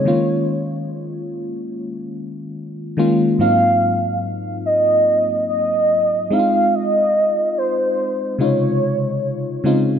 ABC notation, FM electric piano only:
X:1
M:4/4
L:1/8
Q:1/4=72
K:Ebdor
V:1 name="FM electric piano"
[E,A,B,DF]3 z4 [E,A,B,DF] | [A,,G,B,CEF]3 z4 [A,CE_F=F]- | [A,CE_F=F]2 z2 [C,D,A,EF]2 z [D,A,CEF] |]